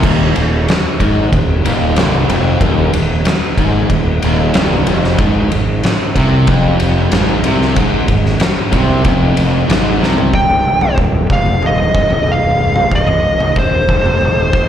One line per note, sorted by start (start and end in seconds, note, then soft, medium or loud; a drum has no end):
0.03 0.34 D#1 medium
0.03 0.34 D#2 loud
0.03 kick loud
0.03 crash loud
0.35 0.66 D#1 medium
0.35 0.62 D#2 medium
0.35 ride medium
0.68 snare loud
0.68 ride medium
1.00 1.31 G#1 loud
1.00 1.31 G#2 loud
1.00 kick medium
1.00 ride medium
1.32 1.63 D#1 medium
1.32 1.58 D#2 medium
1.32 kick medium
1.32 ride medium
1.64 1.95 D#1 loud
1.64 1.96 D#2 medium
1.64 ride medium
1.96 2.27 C1 medium
1.96 2.29 C2 loud
1.96 snare loud
1.96 ride loud
2.29 2.59 F1 loud
2.29 2.61 F2 medium
2.29 ride medium
2.61 2.91 D#1 medium
2.61 2.91 D#2 loud
2.61 kick loud
2.61 ride loud
2.93 3.24 D#1 medium
2.93 3.19 D#2 medium
2.93 ride medium
3.25 snare loud
3.25 ride loud
3.58 3.88 G#1 loud
3.58 3.90 G#2 loud
3.58 kick medium
3.58 ride medium
3.90 4.20 D#1 medium
3.90 4.17 D#2 medium
3.90 kick medium
3.90 ride medium
4.22 4.53 D#1 loud
4.22 4.54 D#2 loud
4.22 ride medium
4.54 4.85 C1 loud
4.54 4.87 C2 loud
4.54 snare loud
4.54 ride loud
4.87 5.17 F1 medium
4.87 5.19 F2 loud
4.87 ride medium
5.04 snare soft
5.18 5.49 G#1 loud
5.18 5.50 G#2 loud
5.18 kick loud
5.18 ride loud
5.51 5.82 G#1 medium
5.51 5.77 G#2 medium
5.51 ride medium
5.83 snare medium
5.83 ride medium
6.15 6.46 C2 loud
6.15 6.48 C3 loud
6.15 kick medium
6.15 ride medium
6.47 7.08 F1 medium
6.47 7.12 F2 loud
6.47 kick loud
6.47 ride medium
6.80 ride medium
7.11 7.42 G#1 loud
7.11 7.43 G#2 loud
7.11 snare loud
7.11 ride loud
7.42 7.73 C2 loud
7.42 7.76 C3 loud
7.42 ride medium
7.61 snare soft
7.76 8.06 G#1 loud
7.76 8.06 G#2 loud
7.76 kick loud
7.76 ride loud
8.07 8.39 G#1 medium
8.07 8.34 G#2 medium
8.07 kick medium
8.07 ride medium
8.26 snare soft
8.40 snare loud
8.40 ride loud
8.71 9.03 C2 loud
8.71 9.04 C3 loud
8.71 kick medium
8.71 ride medium
9.03 9.66 F1 medium
9.03 9.67 F2 loud
9.03 kick loud
9.03 ride medium
9.37 ride medium
9.67 9.99 G#1 loud
9.67 10.00 G#2 loud
9.67 snare loud
9.67 ride loud
10.00 10.31 C2 medium
10.00 10.32 C3 medium
10.00 snare medium
10.18 floor tom loud
10.33 10.63 C1 medium
10.33 10.95 G5 loud
10.33 kick loud
10.33 floor tom medium
10.50 floor tom medium
10.64 10.95 C1 medium
10.81 floor tom medium
10.98 11.28 D#1 loud
10.98 kick loud
11.30 11.60 F1 loud
11.30 11.65 F5 loud
11.30 kick loud
11.30 floor tom medium
11.46 floor tom medium
11.61 11.92 D#1 medium
11.61 floor tom medium
11.66 12.31 D#5 loud
11.94 12.88 C1 medium
11.94 kick medium
11.94 floor tom medium
12.10 floor tom medium
12.27 mid tom medium
12.32 12.90 F5 medium
12.76 floor tom medium
12.91 13.22 C1 medium
12.91 kick loud
12.91 floor tom medium
12.95 13.58 D#5 medium
13.08 floor tom medium
13.23 13.54 C1 medium
13.40 floor tom medium
13.56 13.86 D#1 loud
13.56 14.69 C5 medium
13.56 kick loud
13.89 14.19 F1 loud
13.89 kick medium
13.89 floor tom medium
14.06 floor tom medium
14.21 14.51 D#1 medium
14.21 floor tom medium
14.53 14.69 C1 loud
14.53 kick loud
14.53 floor tom medium